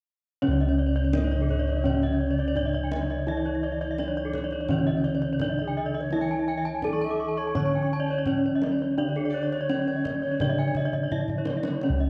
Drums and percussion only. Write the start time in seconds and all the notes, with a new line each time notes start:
0.43 kendang high
0.60 kendang slap
0.95 kendang slap
1.13 kendang high, kendang low
1.31 kendang slap
1.49 kendang low
1.67 kendang slap
1.85 kendang low
2.02 kendang slap
2.38 kendang slap
2.55 kendang low
2.73 kendang slap
2.91 kendang high
3.10 kendang slap
3.45 kendang slap
3.81 kendang slap
3.98 kendang high
4.16 kendang slap
4.33 kendang high, kendang low
4.51 kendang slap
4.69 kendang high, kendang low
4.87 kendang slap
5.05 kendang low
5.22 kendang slap
5.39 kendang high, kendang low
5.57 kendang slap
5.94 kendang slap
6.10 kendang high
6.29 kendang slap
6.65 kendang slap
6.82 kendang high, kendang low
7.00 kendang slap
7.38 kendang slap
7.55 kendang low
7.73 kendang slap
8.08 kendang slap
8.26 kendang low
8.44 kendang slap
8.62 kendang high
8.79 kendang slap
9.16 kendang slap
9.53 kendang slap
9.69 kendang high
9.88 kendang slap
10.05 kendang high, kendang low
10.23 kendang slap
10.40 kendang high, kendang low
10.58 kendang slap
10.75 kendang low
10.93 kendang low
11.12 kendang low
11.28 kendang low
11.46 kendang high
11.63 kendang high
11.82 kendang high
11.99 kendang slap